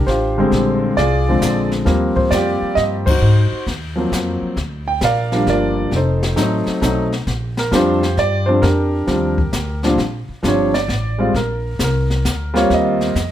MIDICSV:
0, 0, Header, 1, 5, 480
1, 0, Start_track
1, 0, Key_signature, -2, "major"
1, 0, Tempo, 451128
1, 549, Time_signature, 3, 2, 24, 8
1, 14168, End_track
2, 0, Start_track
2, 0, Title_t, "Grand piano"
2, 0, Program_c, 0, 0
2, 0, Note_on_c, 0, 62, 55
2, 70, Note_on_c, 0, 72, 77
2, 85, Note_on_c, 0, 67, 61
2, 92, Note_on_c, 0, 65, 63
2, 367, Note_off_c, 0, 62, 0
2, 400, Note_on_c, 0, 50, 69
2, 402, Note_on_c, 0, 55, 65
2, 413, Note_on_c, 0, 56, 64
2, 425, Note_on_c, 0, 60, 81
2, 993, Note_off_c, 0, 67, 0
2, 996, Note_off_c, 0, 65, 0
2, 1001, Note_off_c, 0, 50, 0
2, 1002, Note_off_c, 0, 55, 0
2, 1008, Note_off_c, 0, 56, 0
2, 1014, Note_off_c, 0, 60, 0
2, 1032, Note_on_c, 0, 74, 101
2, 1047, Note_on_c, 0, 65, 69
2, 1048, Note_on_c, 0, 68, 69
2, 1057, Note_off_c, 0, 72, 0
2, 1367, Note_on_c, 0, 53, 61
2, 1369, Note_on_c, 0, 50, 58
2, 1378, Note_on_c, 0, 56, 60
2, 1384, Note_on_c, 0, 60, 71
2, 1788, Note_off_c, 0, 74, 0
2, 1795, Note_off_c, 0, 65, 0
2, 1796, Note_off_c, 0, 68, 0
2, 1954, Note_off_c, 0, 53, 0
2, 1965, Note_off_c, 0, 50, 0
2, 1969, Note_off_c, 0, 56, 0
2, 1970, Note_on_c, 0, 53, 65
2, 1972, Note_off_c, 0, 60, 0
2, 1976, Note_on_c, 0, 55, 64
2, 1984, Note_on_c, 0, 58, 61
2, 1998, Note_on_c, 0, 60, 74
2, 2299, Note_on_c, 0, 72, 73
2, 2450, Note_off_c, 0, 72, 0
2, 2454, Note_on_c, 0, 74, 91
2, 2481, Note_on_c, 0, 65, 59
2, 2491, Note_on_c, 0, 67, 68
2, 2905, Note_off_c, 0, 74, 0
2, 2929, Note_on_c, 0, 75, 100
2, 3003, Note_off_c, 0, 75, 0
2, 3232, Note_off_c, 0, 65, 0
2, 3237, Note_off_c, 0, 67, 0
2, 3256, Note_on_c, 0, 72, 89
2, 3289, Note_on_c, 0, 63, 55
2, 3300, Note_on_c, 0, 66, 57
2, 3321, Note_off_c, 0, 53, 0
2, 3325, Note_off_c, 0, 55, 0
2, 3329, Note_off_c, 0, 58, 0
2, 3336, Note_off_c, 0, 60, 0
2, 3856, Note_off_c, 0, 72, 0
2, 3873, Note_off_c, 0, 63, 0
2, 3878, Note_off_c, 0, 66, 0
2, 4209, Note_on_c, 0, 53, 60
2, 4221, Note_on_c, 0, 54, 50
2, 4225, Note_on_c, 0, 58, 46
2, 4235, Note_on_c, 0, 60, 68
2, 4824, Note_off_c, 0, 53, 0
2, 4829, Note_off_c, 0, 54, 0
2, 4832, Note_off_c, 0, 58, 0
2, 4837, Note_off_c, 0, 60, 0
2, 5188, Note_on_c, 0, 79, 88
2, 5334, Note_off_c, 0, 79, 0
2, 5363, Note_on_c, 0, 77, 94
2, 5369, Note_on_c, 0, 70, 68
2, 5369, Note_on_c, 0, 74, 72
2, 5659, Note_on_c, 0, 53, 59
2, 5668, Note_on_c, 0, 55, 57
2, 5675, Note_on_c, 0, 58, 52
2, 5684, Note_on_c, 0, 62, 72
2, 5800, Note_off_c, 0, 77, 0
2, 5827, Note_off_c, 0, 70, 0
2, 5833, Note_off_c, 0, 74, 0
2, 5840, Note_on_c, 0, 65, 58
2, 5843, Note_on_c, 0, 70, 60
2, 5849, Note_on_c, 0, 74, 84
2, 6269, Note_off_c, 0, 53, 0
2, 6273, Note_off_c, 0, 55, 0
2, 6277, Note_off_c, 0, 58, 0
2, 6279, Note_off_c, 0, 65, 0
2, 6280, Note_off_c, 0, 70, 0
2, 6281, Note_off_c, 0, 62, 0
2, 6329, Note_on_c, 0, 63, 52
2, 6330, Note_off_c, 0, 74, 0
2, 6331, Note_on_c, 0, 69, 54
2, 6342, Note_on_c, 0, 72, 68
2, 6767, Note_off_c, 0, 63, 0
2, 6769, Note_on_c, 0, 54, 62
2, 6772, Note_on_c, 0, 57, 54
2, 6778, Note_on_c, 0, 60, 57
2, 6783, Note_on_c, 0, 63, 76
2, 7234, Note_off_c, 0, 57, 0
2, 7235, Note_off_c, 0, 69, 0
2, 7238, Note_off_c, 0, 54, 0
2, 7241, Note_off_c, 0, 72, 0
2, 7245, Note_off_c, 0, 60, 0
2, 7248, Note_off_c, 0, 63, 0
2, 7250, Note_on_c, 0, 57, 60
2, 7254, Note_on_c, 0, 54, 63
2, 7266, Note_on_c, 0, 60, 52
2, 7266, Note_on_c, 0, 63, 74
2, 7547, Note_off_c, 0, 57, 0
2, 7549, Note_off_c, 0, 54, 0
2, 7555, Note_off_c, 0, 60, 0
2, 7555, Note_off_c, 0, 63, 0
2, 8075, Note_on_c, 0, 70, 84
2, 8206, Note_on_c, 0, 55, 72
2, 8211, Note_on_c, 0, 53, 76
2, 8218, Note_off_c, 0, 70, 0
2, 8219, Note_on_c, 0, 60, 67
2, 8225, Note_on_c, 0, 62, 80
2, 8238, Note_on_c, 0, 67, 61
2, 8243, Note_on_c, 0, 65, 69
2, 8249, Note_on_c, 0, 72, 94
2, 8505, Note_off_c, 0, 55, 0
2, 8507, Note_off_c, 0, 53, 0
2, 8511, Note_off_c, 0, 60, 0
2, 8515, Note_off_c, 0, 62, 0
2, 8684, Note_off_c, 0, 72, 0
2, 8713, Note_on_c, 0, 74, 97
2, 8991, Note_off_c, 0, 67, 0
2, 8993, Note_off_c, 0, 65, 0
2, 9001, Note_on_c, 0, 72, 83
2, 9009, Note_off_c, 0, 74, 0
2, 9017, Note_on_c, 0, 53, 64
2, 9025, Note_on_c, 0, 55, 64
2, 9028, Note_on_c, 0, 60, 63
2, 9028, Note_on_c, 0, 62, 78
2, 9164, Note_off_c, 0, 53, 0
2, 9167, Note_off_c, 0, 62, 0
2, 9168, Note_off_c, 0, 55, 0
2, 9170, Note_off_c, 0, 60, 0
2, 9170, Note_on_c, 0, 70, 80
2, 9177, Note_off_c, 0, 72, 0
2, 9183, Note_on_c, 0, 62, 59
2, 9186, Note_on_c, 0, 67, 54
2, 9645, Note_off_c, 0, 62, 0
2, 9646, Note_on_c, 0, 53, 60
2, 9655, Note_on_c, 0, 55, 63
2, 9657, Note_on_c, 0, 60, 57
2, 9661, Note_on_c, 0, 62, 64
2, 9946, Note_off_c, 0, 53, 0
2, 9950, Note_off_c, 0, 55, 0
2, 9951, Note_off_c, 0, 60, 0
2, 9953, Note_off_c, 0, 62, 0
2, 10418, Note_off_c, 0, 70, 0
2, 10426, Note_off_c, 0, 67, 0
2, 10463, Note_on_c, 0, 46, 72
2, 10470, Note_on_c, 0, 53, 64
2, 10473, Note_on_c, 0, 55, 62
2, 10475, Note_on_c, 0, 60, 64
2, 10475, Note_on_c, 0, 62, 78
2, 10608, Note_off_c, 0, 46, 0
2, 10611, Note_off_c, 0, 53, 0
2, 10613, Note_off_c, 0, 55, 0
2, 10614, Note_off_c, 0, 60, 0
2, 10614, Note_off_c, 0, 62, 0
2, 11093, Note_on_c, 0, 53, 71
2, 11101, Note_on_c, 0, 60, 66
2, 11106, Note_on_c, 0, 55, 61
2, 11107, Note_on_c, 0, 62, 72
2, 11151, Note_on_c, 0, 73, 81
2, 11390, Note_off_c, 0, 53, 0
2, 11394, Note_off_c, 0, 60, 0
2, 11396, Note_off_c, 0, 55, 0
2, 11397, Note_off_c, 0, 62, 0
2, 11429, Note_on_c, 0, 74, 87
2, 11442, Note_off_c, 0, 73, 0
2, 11900, Note_on_c, 0, 55, 62
2, 11900, Note_on_c, 0, 56, 55
2, 11914, Note_on_c, 0, 60, 64
2, 11920, Note_on_c, 0, 65, 69
2, 12025, Note_off_c, 0, 74, 0
2, 12047, Note_off_c, 0, 55, 0
2, 12047, Note_off_c, 0, 56, 0
2, 12054, Note_off_c, 0, 60, 0
2, 12057, Note_off_c, 0, 65, 0
2, 12089, Note_on_c, 0, 70, 69
2, 12526, Note_off_c, 0, 70, 0
2, 12598, Note_on_c, 0, 70, 75
2, 13333, Note_off_c, 0, 70, 0
2, 13339, Note_on_c, 0, 55, 82
2, 13345, Note_on_c, 0, 58, 70
2, 13353, Note_on_c, 0, 60, 74
2, 13356, Note_on_c, 0, 65, 89
2, 13379, Note_on_c, 0, 73, 78
2, 13519, Note_off_c, 0, 73, 0
2, 13552, Note_on_c, 0, 75, 77
2, 13952, Note_off_c, 0, 55, 0
2, 13955, Note_off_c, 0, 58, 0
2, 13959, Note_off_c, 0, 60, 0
2, 13961, Note_off_c, 0, 65, 0
2, 14168, Note_off_c, 0, 75, 0
2, 14168, End_track
3, 0, Start_track
3, 0, Title_t, "Upright bass"
3, 0, Program_c, 1, 32
3, 73, Note_on_c, 1, 33, 77
3, 536, Note_off_c, 1, 33, 0
3, 546, Note_on_c, 1, 34, 82
3, 1012, Note_off_c, 1, 34, 0
3, 1031, Note_on_c, 1, 36, 91
3, 1494, Note_off_c, 1, 36, 0
3, 1506, Note_on_c, 1, 34, 81
3, 1971, Note_off_c, 1, 34, 0
3, 1978, Note_on_c, 1, 39, 92
3, 2281, Note_off_c, 1, 39, 0
3, 2457, Note_on_c, 1, 41, 90
3, 2760, Note_off_c, 1, 41, 0
3, 2942, Note_on_c, 1, 43, 83
3, 3408, Note_off_c, 1, 43, 0
3, 3424, Note_on_c, 1, 44, 91
3, 3723, Note_off_c, 1, 44, 0
3, 3901, Note_on_c, 1, 39, 88
3, 4368, Note_off_c, 1, 39, 0
3, 4382, Note_on_c, 1, 41, 88
3, 4682, Note_off_c, 1, 41, 0
3, 4857, Note_on_c, 1, 38, 87
3, 5326, Note_off_c, 1, 38, 0
3, 5332, Note_on_c, 1, 34, 92
3, 5803, Note_off_c, 1, 34, 0
3, 5813, Note_on_c, 1, 31, 87
3, 6283, Note_off_c, 1, 31, 0
3, 6292, Note_on_c, 1, 29, 85
3, 6763, Note_off_c, 1, 29, 0
3, 6771, Note_on_c, 1, 33, 87
3, 7076, Note_off_c, 1, 33, 0
3, 7251, Note_on_c, 1, 35, 81
3, 7723, Note_off_c, 1, 35, 0
3, 7734, Note_on_c, 1, 34, 86
3, 8205, Note_off_c, 1, 34, 0
3, 8211, Note_on_c, 1, 41, 90
3, 8683, Note_off_c, 1, 41, 0
3, 8695, Note_on_c, 1, 43, 92
3, 9165, Note_off_c, 1, 43, 0
3, 9174, Note_on_c, 1, 41, 98
3, 9645, Note_off_c, 1, 41, 0
3, 9655, Note_on_c, 1, 39, 94
3, 10126, Note_off_c, 1, 39, 0
3, 10138, Note_on_c, 1, 38, 87
3, 10607, Note_off_c, 1, 38, 0
3, 10618, Note_on_c, 1, 34, 84
3, 10921, Note_off_c, 1, 34, 0
3, 11099, Note_on_c, 1, 31, 87
3, 11569, Note_off_c, 1, 31, 0
3, 11578, Note_on_c, 1, 33, 91
3, 12048, Note_off_c, 1, 33, 0
3, 12070, Note_on_c, 1, 34, 88
3, 12535, Note_off_c, 1, 34, 0
3, 12546, Note_on_c, 1, 36, 87
3, 13013, Note_off_c, 1, 36, 0
3, 13036, Note_on_c, 1, 38, 77
3, 13498, Note_off_c, 1, 38, 0
3, 13516, Note_on_c, 1, 39, 93
3, 13979, Note_off_c, 1, 39, 0
3, 13994, Note_on_c, 1, 41, 89
3, 14168, Note_off_c, 1, 41, 0
3, 14168, End_track
4, 0, Start_track
4, 0, Title_t, "Muted upright bass strokes"
4, 2305, Note_on_c, 9, 29, 36
4, 2411, Note_off_c, 9, 29, 0
4, 2785, Note_on_c, 9, 29, 33
4, 2891, Note_off_c, 9, 29, 0
4, 3746, Note_on_c, 9, 29, 43
4, 3853, Note_off_c, 9, 29, 0
4, 4700, Note_on_c, 9, 29, 42
4, 4807, Note_off_c, 9, 29, 0
4, 7098, Note_on_c, 9, 29, 37
4, 7204, Note_off_c, 9, 29, 0
4, 10944, Note_on_c, 9, 29, 40
4, 11051, Note_off_c, 9, 29, 0
4, 14168, End_track
5, 0, Start_track
5, 0, Title_t, "Drums"
5, 79, Note_on_c, 9, 36, 20
5, 81, Note_on_c, 9, 38, 40
5, 186, Note_off_c, 9, 36, 0
5, 187, Note_off_c, 9, 38, 0
5, 554, Note_on_c, 9, 25, 44
5, 554, Note_on_c, 9, 36, 19
5, 554, Note_on_c, 9, 38, 34
5, 660, Note_off_c, 9, 36, 0
5, 661, Note_off_c, 9, 38, 0
5, 1032, Note_on_c, 9, 36, 18
5, 1036, Note_on_c, 9, 38, 40
5, 1138, Note_off_c, 9, 36, 0
5, 1143, Note_off_c, 9, 38, 0
5, 1507, Note_on_c, 9, 36, 19
5, 1508, Note_on_c, 9, 38, 60
5, 1510, Note_on_c, 9, 44, 55
5, 1614, Note_off_c, 9, 36, 0
5, 1615, Note_off_c, 9, 38, 0
5, 1617, Note_off_c, 9, 44, 0
5, 1825, Note_on_c, 9, 38, 34
5, 1931, Note_off_c, 9, 38, 0
5, 1984, Note_off_c, 9, 25, 0
5, 1984, Note_on_c, 9, 25, 42
5, 1984, Note_on_c, 9, 36, 22
5, 1984, Note_on_c, 9, 38, 38
5, 2090, Note_off_c, 9, 36, 0
5, 2090, Note_off_c, 9, 38, 0
5, 2306, Note_on_c, 9, 36, 54
5, 2413, Note_off_c, 9, 36, 0
5, 2462, Note_on_c, 9, 38, 57
5, 2463, Note_on_c, 9, 36, 19
5, 2464, Note_on_c, 9, 44, 49
5, 2568, Note_off_c, 9, 38, 0
5, 2569, Note_off_c, 9, 36, 0
5, 2571, Note_off_c, 9, 44, 0
5, 2943, Note_on_c, 9, 36, 21
5, 2945, Note_on_c, 9, 38, 43
5, 3050, Note_off_c, 9, 36, 0
5, 3051, Note_off_c, 9, 38, 0
5, 3266, Note_on_c, 9, 36, 82
5, 3267, Note_on_c, 9, 51, 73
5, 3372, Note_off_c, 9, 36, 0
5, 3374, Note_off_c, 9, 51, 0
5, 3425, Note_off_c, 9, 25, 0
5, 3425, Note_on_c, 9, 25, 44
5, 3905, Note_on_c, 9, 36, 19
5, 3908, Note_on_c, 9, 38, 40
5, 4011, Note_off_c, 9, 36, 0
5, 4014, Note_off_c, 9, 38, 0
5, 4384, Note_on_c, 9, 36, 26
5, 4390, Note_on_c, 9, 38, 59
5, 4392, Note_on_c, 9, 44, 56
5, 4490, Note_off_c, 9, 36, 0
5, 4497, Note_off_c, 9, 38, 0
5, 4499, Note_off_c, 9, 44, 0
5, 4861, Note_on_c, 9, 36, 20
5, 4862, Note_off_c, 9, 25, 0
5, 4862, Note_on_c, 9, 25, 45
5, 4862, Note_on_c, 9, 38, 42
5, 4968, Note_off_c, 9, 36, 0
5, 4969, Note_off_c, 9, 38, 0
5, 5332, Note_on_c, 9, 38, 60
5, 5334, Note_on_c, 9, 44, 49
5, 5337, Note_on_c, 9, 36, 19
5, 5438, Note_off_c, 9, 38, 0
5, 5440, Note_off_c, 9, 44, 0
5, 5444, Note_off_c, 9, 36, 0
5, 5660, Note_on_c, 9, 38, 35
5, 5766, Note_off_c, 9, 38, 0
5, 5817, Note_on_c, 9, 36, 18
5, 5819, Note_on_c, 9, 38, 46
5, 5924, Note_off_c, 9, 36, 0
5, 5926, Note_off_c, 9, 38, 0
5, 6297, Note_on_c, 9, 36, 22
5, 6299, Note_off_c, 9, 25, 0
5, 6299, Note_on_c, 9, 25, 47
5, 6299, Note_on_c, 9, 38, 41
5, 6404, Note_off_c, 9, 36, 0
5, 6405, Note_off_c, 9, 38, 0
5, 6625, Note_on_c, 9, 38, 46
5, 6732, Note_off_c, 9, 38, 0
5, 6776, Note_on_c, 9, 38, 55
5, 6777, Note_on_c, 9, 36, 19
5, 6778, Note_on_c, 9, 44, 47
5, 6883, Note_off_c, 9, 36, 0
5, 6883, Note_off_c, 9, 38, 0
5, 6885, Note_off_c, 9, 44, 0
5, 7091, Note_on_c, 9, 38, 36
5, 7198, Note_off_c, 9, 38, 0
5, 7256, Note_on_c, 9, 36, 24
5, 7260, Note_on_c, 9, 38, 54
5, 7262, Note_on_c, 9, 44, 55
5, 7363, Note_off_c, 9, 36, 0
5, 7366, Note_off_c, 9, 38, 0
5, 7368, Note_off_c, 9, 44, 0
5, 7581, Note_on_c, 9, 38, 36
5, 7687, Note_off_c, 9, 38, 0
5, 7734, Note_off_c, 9, 25, 0
5, 7734, Note_on_c, 9, 25, 46
5, 7734, Note_on_c, 9, 38, 42
5, 7735, Note_on_c, 9, 36, 23
5, 7840, Note_off_c, 9, 38, 0
5, 7842, Note_off_c, 9, 36, 0
5, 8058, Note_on_c, 9, 38, 49
5, 8164, Note_off_c, 9, 38, 0
5, 8216, Note_on_c, 9, 36, 21
5, 8217, Note_on_c, 9, 38, 58
5, 8220, Note_on_c, 9, 44, 56
5, 8322, Note_off_c, 9, 36, 0
5, 8324, Note_off_c, 9, 38, 0
5, 8326, Note_off_c, 9, 44, 0
5, 8541, Note_on_c, 9, 38, 39
5, 8647, Note_off_c, 9, 38, 0
5, 8697, Note_on_c, 9, 38, 42
5, 8698, Note_on_c, 9, 36, 19
5, 8803, Note_off_c, 9, 38, 0
5, 8804, Note_off_c, 9, 36, 0
5, 9178, Note_on_c, 9, 36, 16
5, 9180, Note_off_c, 9, 25, 0
5, 9180, Note_on_c, 9, 25, 46
5, 9180, Note_on_c, 9, 38, 41
5, 9285, Note_off_c, 9, 36, 0
5, 9287, Note_off_c, 9, 38, 0
5, 9655, Note_on_c, 9, 38, 39
5, 9657, Note_on_c, 9, 36, 15
5, 9762, Note_off_c, 9, 38, 0
5, 9764, Note_off_c, 9, 36, 0
5, 9981, Note_on_c, 9, 36, 58
5, 10087, Note_off_c, 9, 36, 0
5, 10137, Note_on_c, 9, 38, 64
5, 10138, Note_on_c, 9, 36, 19
5, 10139, Note_on_c, 9, 44, 66
5, 10244, Note_off_c, 9, 36, 0
5, 10244, Note_off_c, 9, 38, 0
5, 10246, Note_off_c, 9, 44, 0
5, 10460, Note_on_c, 9, 38, 39
5, 10566, Note_off_c, 9, 38, 0
5, 10619, Note_on_c, 9, 36, 23
5, 10622, Note_off_c, 9, 25, 0
5, 10622, Note_on_c, 9, 25, 49
5, 10622, Note_on_c, 9, 38, 36
5, 10725, Note_off_c, 9, 36, 0
5, 10728, Note_off_c, 9, 38, 0
5, 11103, Note_on_c, 9, 36, 20
5, 11108, Note_on_c, 9, 38, 52
5, 11110, Note_on_c, 9, 44, 46
5, 11210, Note_off_c, 9, 36, 0
5, 11214, Note_off_c, 9, 38, 0
5, 11217, Note_off_c, 9, 44, 0
5, 11428, Note_on_c, 9, 38, 38
5, 11534, Note_off_c, 9, 38, 0
5, 11585, Note_on_c, 9, 36, 26
5, 11587, Note_on_c, 9, 38, 44
5, 11691, Note_off_c, 9, 36, 0
5, 11694, Note_off_c, 9, 38, 0
5, 12070, Note_on_c, 9, 36, 20
5, 12077, Note_off_c, 9, 25, 0
5, 12077, Note_on_c, 9, 25, 38
5, 12077, Note_on_c, 9, 38, 38
5, 12176, Note_off_c, 9, 36, 0
5, 12183, Note_off_c, 9, 38, 0
5, 12548, Note_on_c, 9, 38, 57
5, 12550, Note_on_c, 9, 44, 64
5, 12552, Note_on_c, 9, 36, 20
5, 12655, Note_off_c, 9, 38, 0
5, 12657, Note_off_c, 9, 44, 0
5, 12658, Note_off_c, 9, 36, 0
5, 12877, Note_on_c, 9, 38, 38
5, 12983, Note_off_c, 9, 38, 0
5, 13034, Note_on_c, 9, 36, 20
5, 13034, Note_on_c, 9, 38, 53
5, 13036, Note_on_c, 9, 44, 58
5, 13140, Note_off_c, 9, 38, 0
5, 13141, Note_off_c, 9, 36, 0
5, 13142, Note_off_c, 9, 44, 0
5, 13359, Note_on_c, 9, 38, 43
5, 13466, Note_off_c, 9, 38, 0
5, 13514, Note_off_c, 9, 25, 0
5, 13514, Note_on_c, 9, 25, 42
5, 13514, Note_on_c, 9, 38, 34
5, 13516, Note_on_c, 9, 36, 19
5, 13620, Note_off_c, 9, 38, 0
5, 13623, Note_off_c, 9, 36, 0
5, 13840, Note_on_c, 9, 38, 36
5, 13946, Note_off_c, 9, 38, 0
5, 13998, Note_on_c, 9, 36, 22
5, 14000, Note_on_c, 9, 38, 52
5, 14002, Note_on_c, 9, 44, 52
5, 14105, Note_off_c, 9, 36, 0
5, 14106, Note_off_c, 9, 38, 0
5, 14108, Note_off_c, 9, 44, 0
5, 14168, Note_off_c, 9, 25, 0
5, 14168, End_track
0, 0, End_of_file